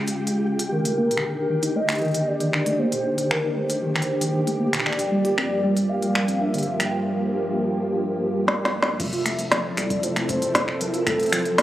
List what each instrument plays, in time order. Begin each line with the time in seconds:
Already playing: string machine C#2 C#3 G#3 F4, synth texture G4 G5
0.08 closed hi-hat
0.27 closed hi-hat
0.59 closed hi-hat
0.72 string machine D#2 D3 D#3 G4, tine electric piano D#3, soft synth lead A#4
0.85 tine electric piano A3, closed hi-hat
0.98 tine electric piano A#3
1.11 tine electric piano A#2, closed hi-hat
1.17 finger snap
1.50 tine electric piano D#3
1.63 tine electric piano D#4, closed hi-hat
1.76 tine electric piano A3, soft synth lead D#5
1.89 finger snap, closed hi-hat
1.92 closed hi-hat
1.95 closed hi-hat
1.98 closed hi-hat
2.01 tine electric piano D#3, closed hi-hat
2.05 closed hi-hat
2.08 closed hi-hat
2.11 closed hi-hat
2.14 tine electric piano D#3, closed hi-hat
2.27 soft synth lead D5
2.40 tine electric piano D#3, closed hi-hat
2.53 tine electric piano D#3, finger snap
2.66 tine electric piano A3, closed hi-hat
2.79 tine electric piano A#3, soft synth lead C5
2.92 tine electric piano A#2, closed hi-hat
3.18 closed hi-hat
3.31 tine electric piano D#3, soft synth lead A#4, finger snap
3.44 tine electric piano D#4
3.57 tine electric piano A3, soft synth lead C5
3.70 closed hi-hat
3.83 tine electric piano D#3
3.95 tine electric piano D#3, finger snap
4.02 closed hi-hat
4.21 tine electric piano D#3, closed hi-hat
4.34 tine electric piano D#3
4.47 tine electric piano A3, closed hi-hat
4.60 tine electric piano A#3
4.73 tine electric piano A#2, finger snap, closed hi-hat
4.80 finger snap
4.86 string machine G2 F3 A#3, soft synth lead D5, finger snap
4.93 finger snap
4.99 closed hi-hat
5.12 tine electric piano G3
5.25 tine electric piano G4, closed hi-hat
5.38 tine electric piano C4, finger snap
5.64 tine electric piano G3
5.77 tine electric piano G3, closed hi-hat
5.89 soft synth lead F5
6.02 tine electric piano G3, closed hi-hat
6.15 tine electric piano G3, finger snap
6.28 tine electric piano C4, closed hi-hat
6.41 tine electric piano D4, soft synth lead E5
6.54 tine electric piano D3, closed hi-hat
6.58 closed hi-hat
6.63 closed hi-hat
6.80 finger snap, closed hi-hat
6.86 soft synth lead G5
8.48 snare
8.65 snare
8.82 snare
8.99 acid bass F1, string machine F3 C4 E4 A4, tine electric piano F3, soft synth lead E5, kick, closed hi-hat, crash
9.13 tine electric piano F4, closed hi-hat
9.26 tine electric piano A3, finger snap, closed hi-hat
9.39 closed hi-hat
9.44 soft synth lead E5
9.51 tine electric piano F3, soft synth lead D5, finger snap, snare, closed hi-hat
9.65 tine electric piano F3
9.77 acid bass C2, finger snap, closed hi-hat
9.90 tine electric piano F3, kick, closed hi-hat
9.96 soft synth lead D5
10.03 acid bass F1, tine electric piano F3, soft synth lead C5, closed hi-hat
10.16 tine electric piano A3, finger snap, closed hi-hat
10.29 tine electric piano C4, kick, closed hi-hat
10.42 tine electric piano C3, closed hi-hat
10.55 kick, snare, closed hi-hat
10.68 finger snap
10.81 tine electric piano F3, soft synth lead A#4, closed hi-hat
10.94 tine electric piano F4, closed hi-hat
11.07 tine electric piano A3, soft synth lead A4, finger snap, kick, closed hi-hat
11.20 closed hi-hat
11.23 closed hi-hat
11.26 closed hi-hat
11.29 finger snap, closed hi-hat
11.33 tine electric piano F3, closed hi-hat
11.39 closed hi-hat
11.42 closed hi-hat
11.45 tine electric piano F3, closed hi-hat
11.58 soft synth lead C5, finger snap, snare, closed hi-hat